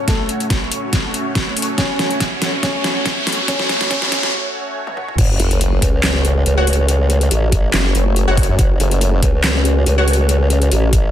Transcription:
Already playing: A3 C#4 F#4 C#5, riser
0.08 A3 A4, kick, snare, closed hi-hat
0.29 closed hi-hat
0.40 closed hi-hat
0.50 kick, snare, closed hi-hat
0.72 closed hi-hat
0.93 kick, snare, closed hi-hat
1.14 closed hi-hat
1.35 kick, snare, closed hi-hat
1.57 open hi-hat
1.62 closed hi-hat
1.78 C#4 C#5, kick, snare, closed hi-hat
1.99 snare, closed hi-hat
2.11 closed hi-hat
2.20 kick, snare, closed hi-hat
2.42 snare, closed hi-hat
2.63 C#4 C#5, kick, snare, closed hi-hat
2.84 snare, closed hi-hat
3.06 kick, snare, closed hi-hat
3.27 snare, open hi-hat
3.33 closed hi-hat
3.48 C#4 C#5, kick, snare, closed hi-hat
3.60 snare
3.69 snare, closed hi-hat
3.81 snare, closed hi-hat
3.91 C#4 C#5, kick, snare, closed hi-hat
4.02 snare
4.12 snare, closed hi-hat
4.23 snare
4.87 high tom
4.97 mid tom
5.08 mid tom
5.18 F#1 A3 C#4 F#4 C#5, kick, closed hi-hat, crash, sub drop
5.40 F#1, closed hi-hat
5.51 closed hi-hat
5.61 closed hi-hat
5.82 C#2, kick, closed hi-hat
6.03 snare, clap, closed hi-hat
6.25 closed hi-hat
6.46 C#2, closed hi-hat
6.57 F#4 C#5 F#5
6.67 open hi-hat
6.73 closed hi-hat
6.89 closed hi-hat
7.10 closed hi-hat
7.21 closed hi-hat
7.31 A1, closed hi-hat
7.52 kick, closed hi-hat
7.74 F#1, snare, clap, closed hi-hat
7.95 F#1, closed hi-hat
8.16 closed hi-hat
8.28 F#1 F#4 C#5 F#5
8.37 kick, open hi-hat
8.43 closed hi-hat
8.49 F#2
8.59 F#1, kick, closed hi-hat
8.80 F#1, closed hi-hat
8.91 closed hi-hat
9.01 closed hi-hat
9.23 C#2, kick, closed hi-hat
9.44 snare, clap, closed hi-hat
9.65 closed hi-hat
9.86 C#2, closed hi-hat
9.98 F#4 C#5 F#5
10.08 open hi-hat
10.13 closed hi-hat
10.29 closed hi-hat
10.50 closed hi-hat
10.62 closed hi-hat
10.72 A1, closed hi-hat
10.93 kick, closed hi-hat

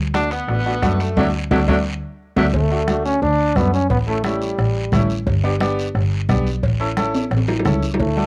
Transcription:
Already playing: D2
0.14 A3 D4 F#4, bombo rim, high conga, high timbale, short guiro
0.31 B3, high timbale, short guiro
0.48 A1 A3 D4 F#4, bombo rim, high conga, high timbale, long guiro
0.66 A3 D4 F#4
0.82 F#2 A3 D4 F#4, bombo low, bombo rim, high conga, high timbale, short guiro
1.00 A3, high timbale, short guiro
1.17 D2 F#3 A3 D4 F#4, bombo low, high conga, high timbale, long guiro
1.51 D2 F#3 A3 D4 F#4, bombo low, high conga, high timbale, long guiro
1.68 D2 F#3 A3 D4 F#4, bombo low, high conga, high timbale, long guiro
2.36 D2 F#3 A3 D4 F#4, bombo low, high conga, high timbale, long guiro
2.54 D2 A3, bombo low, cowbell, long guiro
2.71 A3 D4 F#4
2.88 A3 D4 F#4, bombo rim, high conga, short guiro
3.05 C#4, short guiro
3.22 D2 D4, cowbell, high conga, long guiro
3.56 F#2 A3 B3 D4 F#4, bombo low, bombo rim, high conga, short guiro
3.74 C#4, short guiro
3.90 A1 B3, bombo low, cowbell, high conga, long guiro
4.07 A3 C#4 E4
4.24 G3 A3 C#4 E4, bombo rim, high conga, short guiro
4.42 short guiro
4.58 A1, bombo rim, cowbell, high conga, long guiro
4.92 A1 A3 C#4 E4, bombo low, bombo rim, high conga, low conga, short guiro
5.10 short guiro
5.27 G1, bombo low, cowbell, high conga, long guiro
5.43 B3 D4 G4
5.60 B3 D4 G4, bombo rim, high conga, short guiro
5.79 short guiro
5.95 G1, bombo rim, cowbell, high conga, long guiro
6.29 B1 B3 D4 G4, bombo low, bombo rim, high conga, short guiro
6.47 short guiro
6.63 A1, bombo low, cowbell, high conga, long guiro
6.80 C#4 E4 A4
6.97 C#4 E4 A4, bombo rim, high conga, short guiro
7.15 high timbale, short guiro
7.31 A1, bombo rim, cowbell, high conga, long guiro
7.37 high timbale
7.48 low timbale
7.59 low timbale
7.65 C#2 C#4 E4 A4, bombo low, bombo rim, high conga, low conga, short guiro
7.82 high conga, short guiro
7.94 low timbale
7.99 D2 A3, bombo low, cowbell, high conga, long guiro
8.17 D4 F#4 A4, high conga

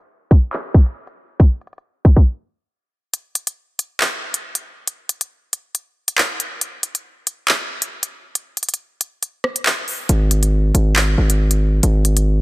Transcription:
0.31 kick, closed hi-hat
0.53 clap
0.74 kick
0.86 closed hi-hat
1.07 closed hi-hat
1.40 kick, closed hi-hat
1.61 closed hi-hat
1.67 closed hi-hat
1.73 closed hi-hat
1.78 closed hi-hat
2.05 kick, closed hi-hat
2.16 kick
3.14 closed hi-hat
3.35 closed hi-hat
3.47 closed hi-hat
3.79 closed hi-hat
4.00 clap
4.34 closed hi-hat
4.55 closed hi-hat
4.87 closed hi-hat
5.09 closed hi-hat
5.21 closed hi-hat
5.53 closed hi-hat
5.75 closed hi-hat
6.08 closed hi-hat
6.18 clap
6.40 closed hi-hat
6.61 closed hi-hat
6.83 closed hi-hat
6.95 closed hi-hat
7.27 closed hi-hat
7.48 clap
7.82 closed hi-hat
8.03 closed hi-hat
8.35 closed hi-hat
8.57 closed hi-hat
8.63 closed hi-hat
8.69 closed hi-hat
8.74 closed hi-hat
9.01 closed hi-hat
9.23 closed hi-hat
9.44 cross-stick
9.56 closed hi-hat
9.66 clap
9.88 open hi-hat
10.09 G#1, closed hi-hat
10.31 closed hi-hat
10.43 closed hi-hat
10.74 G#1, closed hi-hat
10.96 clap
11.18 G#1
11.30 closed hi-hat
11.51 closed hi-hat
11.83 G#1, closed hi-hat
12.05 closed hi-hat
12.17 closed hi-hat

